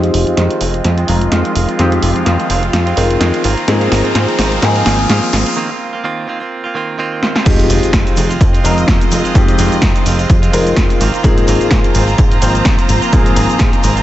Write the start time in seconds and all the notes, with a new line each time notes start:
Already playing: F2 F3 G#3 C4 D#4 F4 G4 D#5, riser
0.03 G#3 C4 F4, closed hi-hat
0.14 F1, open hi-hat
0.26 F2 G#3 C4 F4, closed hi-hat
0.37 F2 D#3 G#3 C4 F4, snare, closed hi-hat
0.50 closed hi-hat
0.60 F1 D#3 G#3 C4 F4, open hi-hat
0.74 G#3 C4 F4, closed hi-hat
0.84 F2, snare, closed hi-hat
0.97 G#3 C4 F4, closed hi-hat
1.07 F1 D#3 F3 G#3 C4 D#4 F4 A#4, open hi-hat
1.21 closed hi-hat
1.31 F2 D#3 G#3 C4 F4, snare, closed hi-hat
1.45 closed hi-hat
1.55 F1, open hi-hat
1.68 G#3 C4 F4, closed hi-hat
1.78 F2 D#3 F3 G#3 C4 D#4 F4 G4 F5, snare, closed hi-hat
1.92 G#3 C4 F4, closed hi-hat
2.02 F1, open hi-hat
2.15 F2 G#3 C4 F4, closed hi-hat
2.26 F2 D#3 G#3 C4 F4, snare, closed hi-hat
2.40 closed hi-hat
2.49 F1 D#3 G#3 C4 F4, open hi-hat
2.62 G#3 C4 F4, closed hi-hat, shaker
2.73 F2, snare, closed hi-hat
2.86 G#3 C4 F4, closed hi-hat
2.96 F1 D#3 F3 G#3 C4 D#4 F4 A#4, open hi-hat, shaker
3.10 closed hi-hat, shaker
3.20 F2 D#3 G#3 C4 F4, snare, closed hi-hat, shaker
3.34 closed hi-hat
3.44 G#1 D#3 A#3 C4 F4 C5 A#5, open hi-hat, shaker
3.57 closed hi-hat, shaker
3.67 G#2 F3 A#3 C4 D#4 G#4, snare, closed hi-hat, shaker
3.81 A#3 C4 F4, closed hi-hat, shaker
3.91 G#1, snare, open hi-hat, shaker
4.04 A#3 C4 F4, closed hi-hat, shaker
4.15 G#2 D#3 A#3 C4 F4, snare, closed hi-hat, shaker
4.28 closed hi-hat, shaker
4.38 G#1 D#3 A#3 C4 F4, snare, open hi-hat, shaker
4.52 closed hi-hat
4.62 G#2 F3 A#3 C4 D#4 G#4, snare, closed hi-hat, shaker
4.75 A#3 C4 F4, closed hi-hat, shaker
4.85 G#1 D#3 A#3 C4 F4, snare, open hi-hat, shaker
4.99 A#3 C4 F4, closed hi-hat, shaker
5.09 G#2 D#3 A#3 C4 F4, snare, closed hi-hat, shaker
5.23 closed hi-hat
5.33 G#1, snare, open hi-hat, shaker
5.46 A#3 C4 F4, closed hi-hat
5.56 D#3 A#3 C4 F4
5.69 C4 F4
5.93 A#3 C4 F4
6.04 D#3 A#3 C4 F4
6.27 D#3 A#3 C4 F4
6.40 A#3 C4 F4
6.64 A#3 C4 F4
6.74 D#3 A#3 C4 F4
6.98 D#3 A#3 C4 F4
7.23 snare
7.35 A#3 C4 F4, snare
7.45 F2 D#3 F3 G#3 C4 D#4 F4 G4 D#5, kick, closed hi-hat, crash, impact, cabasa, shaker
7.59 closed hi-hat, cabasa, shaker
7.69 F1 D#3 G#3 C4 F4, open hi-hat, cabasa, shaker
7.83 F2, closed hi-hat, cabasa
7.93 F2 D#3, kick, snare, closed hi-hat, cabasa, shaker
8.06 closed hi-hat, cabasa, shaker
8.16 F1 D#3 G#3 C4 F4, open hi-hat, cabasa, shaker
8.29 G#3 C4 F4, closed hi-hat, cabasa, shaker
8.41 F2, kick, closed hi-hat, cabasa, shaker
8.53 G#3 C4 F4, closed hi-hat, cabasa, shaker
8.64 F1 D#3 F3 G#3 C4 D#4 F4 A#4, open hi-hat, cabasa, shaker
8.77 closed hi-hat, cabasa, shaker
8.88 F2 D#3 G#3 C4 F4, kick, snare, closed hi-hat, cabasa, shaker
9.00 G#3 C4 F4, closed hi-hat, cabasa, shaker
9.11 F1, open hi-hat, cabasa, shaker
9.24 G#3 C4 F4, closed hi-hat, cabasa, shaker
9.34 F2 D#3 F3 G#3 C4 D#4 G4, kick, closed hi-hat, cabasa, shaker
9.48 closed hi-hat, cabasa, shaker
9.58 F1 D#3 G#3 C4 F4, open hi-hat, cabasa, shaker
9.72 F2, closed hi-hat, cabasa, shaker
9.82 F2 D#3 G#3 C4 F4, kick, snare, closed hi-hat, cabasa
9.96 closed hi-hat, cabasa, shaker
10.05 F1 D#3 G#3 C4 F4, open hi-hat, cabasa, shaker
10.18 G#3 C4 F4, closed hi-hat, cabasa, shaker
10.30 F2, kick, closed hi-hat, cabasa
10.42 G#3 C4 F4, closed hi-hat, cabasa, shaker
10.52 F1 D#3 F3 G#3 C4 D#4 F4 A#4, open hi-hat, cabasa, shaker
10.66 closed hi-hat, cabasa, shaker
10.76 F2 D#3 F4, kick, snare, closed hi-hat, cabasa, shaker
10.89 G#3 C4 F4, closed hi-hat, cabasa, shaker
11.00 G#1 D#3 A#3 C4 F4 C5 A#5, open hi-hat, cabasa, shaker
11.14 closed hi-hat, cabasa, shaker
11.23 G#2 F3 A#3 C4 D#4 G#4, kick, closed hi-hat, cabasa, shaker
11.38 closed hi-hat, cabasa, shaker
11.47 G#1 D#3 A#3 C4 F4, open hi-hat, cabasa, shaker
11.61 G#2, closed hi-hat, cabasa, shaker
11.71 G#2 C4 F4, kick, snare, closed hi-hat, cabasa, shaker
11.84 closed hi-hat, cabasa, shaker
11.94 G#1 D#3 A#3 C4 F4, open hi-hat, cabasa, shaker
12.07 A#3 C4 F4, closed hi-hat, cabasa, shaker
12.18 G#2, kick, closed hi-hat, cabasa, shaker
12.31 A#3 C4 F4, closed hi-hat, cabasa, shaker
12.41 G#1 D#3 F3 A#3 C4 D#4 F4 C5, open hi-hat, cabasa, shaker
12.55 closed hi-hat, cabasa, shaker
12.65 G#2 D#3 A#3 C4 F4, kick, snare, closed hi-hat, cabasa
12.78 A#3 C4 F4, closed hi-hat, cabasa, shaker
12.89 G#1, open hi-hat, cabasa, shaker
13.02 A#3 C4 F4, closed hi-hat, cabasa, shaker
13.12 G#2 D#3 F3 A#3 C4 D#4 F4 G#4, kick, closed hi-hat, cabasa, shaker
13.26 closed hi-hat, cabasa, shaker
13.35 G#1 D#3 A#3 C4 F4, open hi-hat, cabasa, shaker
13.49 G#2, closed hi-hat, cabasa, shaker
13.59 G#2 D#3 A#3 C4 F4, kick, snare, closed hi-hat, cabasa
13.73 closed hi-hat, cabasa, shaker
13.83 G#1 D#3 A#3 C4 F4, open hi-hat, cabasa, shaker
13.96 A#3 C4 F4, closed hi-hat, cabasa, shaker